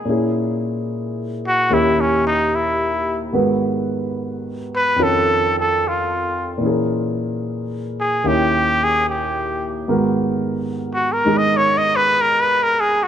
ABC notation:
X:1
M:4/4
L:1/16
Q:"Swing" 1/4=73
K:G#m
V:1 name="Muted trumpet"
z6 F2 (3E2 C2 D2 E3 z | z6 B2 =A2 A2 =F3 z | z6 G2 =G2 ^G2 =G3 z | z4 z F A d c d B A B A G F |]
V:2 name="Grand piano"
[A,,A,CEG]8 [D,,D,CE=G]8 | [G,,D,B,FB]8 [=F,,_E,C=F=A]8 | [A,,E,CGA]8 [D,,D,CE=g]8 | [G,,D,B,FA]6 [D,G,DG]8- [D,G,DG]2 |]